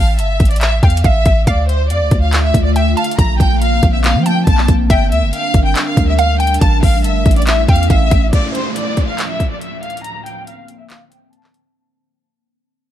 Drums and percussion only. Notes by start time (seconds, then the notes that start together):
0.19 closed hi-hat
0.40 kick, closed hi-hat
0.45 closed hi-hat
0.51 closed hi-hat
0.56 closed hi-hat
0.61 clap, closed hi-hat
0.83 kick, closed hi-hat
0.90 closed hi-hat
0.97 closed hi-hat
1.04 kick, closed hi-hat
1.26 kick, closed hi-hat
1.47 kick, closed hi-hat
1.69 closed hi-hat
1.90 closed hi-hat
2.11 kick, closed hi-hat
2.33 clap, closed hi-hat
2.54 kick, closed hi-hat
2.76 closed hi-hat
2.97 closed hi-hat
3.04 closed hi-hat
3.11 closed hi-hat
3.19 kick, closed hi-hat
3.40 kick, closed hi-hat
3.62 closed hi-hat
3.83 kick, closed hi-hat
4.04 clap, closed hi-hat
4.26 closed hi-hat
4.47 kick, closed hi-hat
4.58 clap
4.68 kick, closed hi-hat
4.90 kick, closed hi-hat
5.12 closed hi-hat
5.33 closed hi-hat
5.54 kick, closed hi-hat
5.75 clap, closed hi-hat
5.97 kick, closed hi-hat
6.19 closed hi-hat
6.40 closed hi-hat
6.47 closed hi-hat
6.54 closed hi-hat
6.61 kick, closed hi-hat
6.83 kick, open hi-hat
7.04 closed hi-hat
7.26 kick, closed hi-hat
7.31 closed hi-hat
7.36 closed hi-hat
7.42 closed hi-hat
7.47 clap, closed hi-hat
7.68 kick, closed hi-hat
7.76 closed hi-hat
7.83 closed hi-hat
7.90 kick, closed hi-hat
8.11 kick, closed hi-hat
8.33 kick, closed hi-hat
8.55 closed hi-hat
8.76 closed hi-hat
8.97 kick, closed hi-hat
9.18 clap, closed hi-hat
9.40 kick, closed hi-hat
9.61 closed hi-hat
9.83 closed hi-hat
9.90 closed hi-hat
9.97 closed hi-hat
10.04 closed hi-hat
10.26 closed hi-hat
10.47 closed hi-hat
10.68 closed hi-hat
10.90 clap, closed hi-hat
11.12 closed hi-hat
11.33 closed hi-hat
11.44 clap
11.54 closed hi-hat